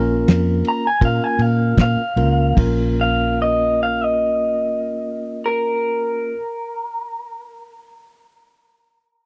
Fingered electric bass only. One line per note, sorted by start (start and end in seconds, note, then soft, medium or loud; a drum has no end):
0.00 0.24 A#1 loud
0.28 0.61 F2 medium
1.02 1.19 A#2 medium
1.39 1.74 A#2 medium
1.78 1.96 A#2 medium
1.97 muted fingered electric bass stroke soft
2.16 2.53 C#2 medium
2.57 6.35 A#1 medium